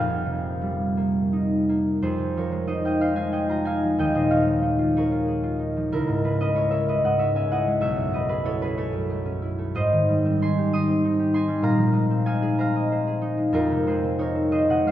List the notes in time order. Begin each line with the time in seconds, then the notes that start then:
Already playing: F1 F2 F3 A#3 G4 G#4 A#4 C5 F5 G5
0.26 C3
0.62 G3
0.97 A#3
1.33 D#4
1.69 A#3
2.02 F2 G#4 C5
2.18 C3
2.37 F3 A#4 C#5
2.51 G#3
2.67 D#4 C5 D#5
2.85 F4 D#5 G5
3.00 D#4 C5 F5
3.15 G#3 F5 G#5
3.32 D#4 D#5 G5
3.49 F4 G5 A#5
3.65 D#4 F5 G#5
3.83 F3
3.98 D#2 D#5 G5
4.15 A#2 C5 D#5
4.30 F3 C#5 F5
4.46 G#3
4.62 D#4
4.78 F4
4.96 G#4 A#4 C#5
5.11 F4
5.28 G#4
5.43 F4
5.59 D#4
5.77 F3
5.92 C#2 E4 A#4
6.08 G#2
6.24 G#3 G#4 B4
6.40 C#4 B4 D#5
6.55 E4 A#4 C#5
6.71 C#4 C#5 E5
6.88 G#3 B4 D#5
7.04 G#2 D#5 F#5
7.19 G#3 C#5 E5
7.35 C#4 E5 G#5
7.51 E4 D#5 F#5
7.67 G#3
7.81 B1 C#5 E5
7.96 F#2
8.13 A3 B4 D#5
8.29 C#4 G#4 B4
8.44 E4 A4 C#5
8.62 C#4 G#4 B4
8.77 A3 A4 C#5
8.93 F#2
9.10 A3
9.25 C#4
9.42 E4
9.58 A3
9.75 G#2 C5 D#5
9.92 D#3
10.09 G3
10.25 C4
10.42 D#4 G#5 C6
10.58 G4
10.73 D#4 C6 D#6
10.89 C4
11.05 D#4
11.19 G4
11.34 D#4 G#5 C6
11.48 G3
11.62 A#2 F5 A#5
11.78 F3
11.93 G#3
12.11 C4
12.26 D#4 F5 G#5
12.42 G#4
12.59 C5 F5 A#5
12.76 D#5
12.92 C5
13.07 G#4
13.22 D#4
13.37 G#3
13.53 F2 F4 A#4
13.71 C3
13.87 G#3 G#4 C5
14.04 C4
14.19 D#4 A#4 C#5
14.35 C4
14.51 G#3 C5 D#5
14.70 C3 D#5 F#5
14.86 G#3 C5 F5